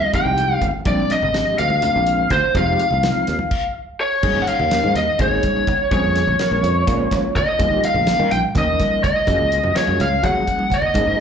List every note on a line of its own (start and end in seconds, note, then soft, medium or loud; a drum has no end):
0.00 0.11 F5 medium
0.00 high conga medium
0.13 0.57 F3 medium
0.13 0.58 G#3 soft
0.13 0.58 C4 medium
0.13 0.58 D#4 medium
0.13 0.58 G4 medium
0.13 0.65 G5 medium
0.13 muted fretless electric bass stroke soft
0.13 kick medium
0.13 closed hi-hat medium
0.13 low conga medium
0.25 0.55 C2 medium
0.38 closed hi-hat medium
0.61 0.72 G#1 medium
0.61 kick medium
0.61 closed hi-hat medium
0.61 low conga medium
0.75 muted fretless electric bass stroke soft
0.85 1.06 A#1 medium
0.85 1.15 F3 medium
0.85 1.15 G#3 medium
0.85 1.15 C4 medium
0.85 1.16 D4 medium
0.85 1.16 G4 medium
0.85 1.11 D5 medium
0.85 kick loud
0.85 closed hi-hat medium
0.85 high conga medium
1.10 1.58 D#5 medium
1.10 muted fretless electric bass stroke soft
1.10 snare soft
1.10 closed hi-hat medium
1.22 1.43 G#1 medium
1.22 low conga medium
1.34 1.63 F3 medium
1.34 1.64 G#3 medium
1.34 1.64 C4 medium
1.34 1.64 D4 medium
1.34 1.64 G4 medium
1.34 snare medium
1.34 closed hi-hat medium
1.58 1.89 D2 medium
1.58 2.33 F5 medium
1.58 closed hi-hat medium
1.70 high conga medium
1.82 2.26 F3 medium
1.82 2.26 G#3 medium
1.82 2.26 C4 medium
1.82 2.26 D4 medium
1.82 2.27 G4 medium
1.82 closed hi-hat medium
1.82 low conga medium
1.96 2.25 A#1 medium
2.07 closed hi-hat medium
2.30 2.41 D2 medium
2.30 2.57 C5 medium
2.30 kick medium
2.30 snare soft
2.30 closed hi-hat medium
2.30 low conga medium
2.44 muted fretless electric bass stroke soft
2.55 2.74 F1 medium
2.55 2.84 F3 medium
2.55 2.84 G#3 medium
2.55 2.84 C4 medium
2.55 2.84 D#4 medium
2.55 2.84 G4 medium
2.55 3.72 F5 medium
2.55 kick medium
2.55 closed hi-hat medium
2.55 high conga medium
2.67 low conga soft
2.80 closed hi-hat medium
2.90 3.11 C2 medium
2.90 low conga medium
3.03 3.32 F3 medium
3.03 3.32 G#3 soft
3.03 3.33 C4 medium
3.03 3.33 D#4 soft
3.03 3.33 F4 medium
3.03 snare loud
3.03 closed hi-hat medium
3.27 3.38 D#2 medium
3.27 snare soft
3.27 closed hi-hat medium
3.39 high conga medium
3.39 low conga soft
3.51 kick medium
3.51 crash medium
4.01 4.39 C#5 medium
4.23 4.33 G#1 medium
4.23 4.52 F#3 medium
4.23 4.53 A#3 medium
4.23 4.53 C#4 medium
4.23 4.53 D#4 medium
4.23 4.53 G#4 medium
4.23 kick loud
4.23 crash medium
4.23 high conga medium
4.35 4.45 G#1 medium
4.35 low conga soft
4.42 4.48 F#5 medium
4.47 4.93 F5 medium
4.47 muted fretless electric bass stroke soft
4.47 closed hi-hat medium
4.59 4.79 D#2 medium
4.59 low conga medium
4.71 5.01 F#3 medium
4.71 5.01 A#3 medium
4.71 5.01 C#4 soft
4.71 5.01 D#4 soft
4.71 5.01 A#4 medium
4.71 snare loud
4.71 closed hi-hat medium
4.71 low conga soft
4.84 4.94 G#2 medium
4.84 high conga medium
4.95 5.05 D#2 medium
4.95 5.21 D#5 medium
4.95 snare soft
4.95 closed hi-hat medium
5.08 low conga soft
5.19 5.39 G#1 medium
5.19 5.63 F#3 medium
5.19 5.63 A#3 medium
5.19 5.63 C#4 medium
5.19 5.64 D#4 medium
5.19 5.64 G#4 medium
5.19 5.91 C#5 medium
5.19 kick loud
5.19 closed hi-hat medium
5.19 low conga medium
5.32 low conga soft
5.43 kick medium
5.43 closed hi-hat medium
5.43 high conga medium
5.56 low conga soft
5.67 kick medium
5.67 closed hi-hat medium
5.67 low conga medium
5.91 6.01 A#1 medium
5.91 6.20 F3 medium
5.91 6.21 A#3 medium
5.91 6.21 C4 medium
5.91 6.21 C#4 medium
5.91 6.21 G#4 medium
5.91 7.32 C#5 medium
5.91 kick loud
5.91 closed hi-hat medium
5.91 high conga medium
6.04 6.23 F2 medium
6.04 low conga soft
6.16 snare soft
6.16 closed hi-hat medium
6.27 6.37 A#1 medium
6.27 low conga medium
6.39 6.69 F3 medium
6.39 6.69 A#3 medium
6.39 6.70 C4 medium
6.39 6.70 C#4 soft
6.39 6.70 A#4 medium
6.39 snare loud
6.39 closed hi-hat medium
6.39 low conga soft
6.51 6.61 A#1 medium
6.51 high conga medium
6.63 6.83 F2 medium
6.63 closed hi-hat medium
6.76 low conga soft
6.87 7.07 A#2 medium
6.87 7.31 F3 medium
6.87 7.31 G#3 medium
6.87 7.31 A#3 medium
6.87 7.31 C#4 medium
6.87 7.31 F4 medium
6.87 kick loud
6.87 closed hi-hat medium
6.87 low conga medium
7.00 low conga soft
7.11 kick medium
7.11 snare soft
7.11 closed hi-hat medium
7.11 high conga medium
7.25 low conga soft
7.36 7.86 D#5 medium
7.36 kick medium
7.36 closed hi-hat medium
7.36 low conga medium
7.59 7.69 D#2 medium
7.59 7.88 F3 medium
7.59 7.89 A#3 medium
7.59 7.89 C#4 medium
7.59 7.89 D#4 medium
7.59 7.89 G4 medium
7.59 kick loud
7.59 closed hi-hat medium
7.59 high conga medium
7.71 7.81 D#2 medium
7.71 low conga soft
7.83 8.32 F5 medium
7.83 muted fretless electric bass stroke soft
7.83 closed hi-hat medium
7.94 8.14 A#1 medium
7.94 low conga medium
8.07 8.37 F3 medium
8.07 8.37 A#3 medium
8.07 8.37 C#4 medium
8.07 8.37 D#4 soft
8.07 8.38 F4 medium
8.07 snare loud
8.07 closed hi-hat medium
8.07 low conga soft
8.19 8.29 D#3 medium
8.19 high conga medium
8.31 8.42 A#1 medium
8.31 8.38 G5 medium
8.31 snare soft
8.31 closed hi-hat medium
8.31 low conga soft
8.43 low conga soft
8.55 8.75 D#2 medium
8.55 8.99 F3 medium
8.55 8.99 A#3 medium
8.55 9.00 C#4 medium
8.55 9.00 D#4 medium
8.55 9.00 A#4 medium
8.55 9.03 D#5 medium
8.55 kick loud
8.55 snare soft
8.55 closed hi-hat medium
8.55 low conga medium
8.68 low conga soft
8.80 kick medium
8.80 snare soft
8.80 closed hi-hat medium
8.80 high conga medium
8.92 low conga soft
9.04 9.76 D#5 medium
9.04 kick medium
9.04 closed hi-hat medium
9.04 low conga medium
9.27 9.37 F#2 medium
9.27 9.57 F#3 medium
9.27 9.57 A#3 medium
9.27 9.57 C#4 medium
9.27 9.57 F4 medium
9.27 9.57 G#4 medium
9.27 kick loud
9.27 closed hi-hat medium
9.27 high conga medium
9.27 low conga soft
9.41 9.60 C#2 medium
9.52 closed hi-hat medium
9.64 9.74 F#2 medium
9.64 low conga medium
9.76 10.05 F#3 medium
9.76 10.05 A#3 medium
9.76 10.05 C#4 medium
9.76 10.05 F4 medium
9.76 10.05 G#4 medium
9.76 10.01 C#5 medium
9.76 muted fretless electric bass stroke soft
9.76 snare loud
9.76 closed hi-hat medium
9.87 9.98 F#2 medium
9.87 high conga medium
9.87 low conga soft
10.00 10.19 C#2 medium
10.00 10.23 F5 medium
10.00 snare soft
10.00 closed hi-hat medium
10.00 low conga soft
10.23 10.68 F3 medium
10.23 10.43 F#3 medium
10.23 10.68 F#3 medium
10.23 10.68 A#3 medium
10.23 10.68 C#4 medium
10.23 10.68 G#4 medium
10.23 10.74 F#5 medium
10.23 kick loud
10.23 closed hi-hat medium
10.23 low conga medium
10.35 high conga medium
10.47 kick medium
10.47 closed hi-hat medium
10.47 high conga medium
10.59 high conga medium
10.70 11.18 D#5 medium
10.70 kick medium
10.70 closed hi-hat medium
10.70 low conga medium
10.82 low conga medium
10.94 11.05 G#2 medium
10.94 11.20 F#3 medium
10.94 11.20 A#3 medium
10.94 11.20 C#4 medium
10.94 11.20 D#4 medium
10.94 11.20 G#4 medium
10.94 kick loud
10.94 closed hi-hat medium
10.94 high conga medium
11.06 11.17 G#2 medium
11.06 low conga soft